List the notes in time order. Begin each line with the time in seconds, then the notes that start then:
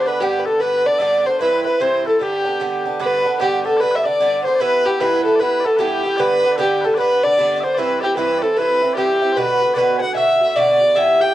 0.03 D4 B4 D5
0.07 D3 B3 B4
0.20 G2 D3 B3 D4 G4
0.39 B4
0.45 D3 B3 D4 A4
0.60 G2 D3 B3 D4 B4
0.85 D3 B3 D4 D5
0.98 G2 D3 B3 D4 D5 E5
1.25 D3 B3 D4 C5
1.41 G2 E3 C4 E4 B4
1.66 E3 C4 E4 B4
1.80 G2 E3 C4 E4 C5
2.04 E3 C4 E4 A4
2.19 G2 D3 B3 D4 G4
2.45 D3 B3 D4
2.60 G2 D3 B3 D4
2.85 D3 B3 D4
3.00 G2 D3 B3 D4 B4
3.25 D3 B3 D4
3.40 G2 D3 B3 D4 G4
3.65 D3 B3 D4 A4
3.77 G2 B4 D5
3.82 D3 B3 D4
3.91 E5 F#5
3.96 E5
4.04 B3 D4 D5
4.08 D3
4.21 G2 D3 B3 D4
4.44 D3 B3 D4 C5
4.56 D5
4.60 G2 E3 B3 E4 B4
4.85 E3 B3 E4 G4
5.00 G2 E3 B3 E4 B4
5.25 E3 B3 E4 A4
5.36 G2 B4 D5
5.40 E3 B3 E4 B4
5.60 E4 D5
5.65 E3 B3 A4
5.76 G2 E3 B3 G4 B4
5.81 E4
6.04 E3 B3 E4
6.17 G2 D3 B3 D4 B4 D5
6.43 D3 B3 D4
6.52 A4 D5
6.58 G2 D3 B3 D4 G4
6.81 D4 A4 B4
6.85 D3 B3 A4
6.95 G2 B4 D5
6.99 D3 B3 D4
7.23 D3 B3 D4 D5
7.38 G2 D3 B3 D4
7.56 D5
7.60 D4 C5 E5
7.65 D3 B3
7.75 G2 E3 B4 D5
7.79 C4 E4 B4
8.00 C4 E4 G4 D5
8.05 E3
8.16 G2 E3 C4 E4 B4
8.38 E4 A4 D5
8.44 E3 C4
8.56 G2 E3 C4 E4 B4
8.82 E3 C4 E4
8.94 G2 G4 D5
8.98 E3 C4 E4 G4
9.22 E3 C4 E4
9.32 B4 C5
9.37 B2 D3 B3 F#4 B4
9.62 D3 B3 F#4
9.74 B2 D3 B3 F#4 B4 D5
9.78 B4
9.98 F#4 F#5 G#5
10.02 D3 B3 F#5
10.13 B2 D3 B3 E5 G#5
10.18 F#4
10.41 D3 B3 F#4
10.56 B2 D3 B3 F#4 D5
10.80 D3 B3 F#4
10.95 G2 E3 B3 G4 E5
11.20 E3 B3 G4 G5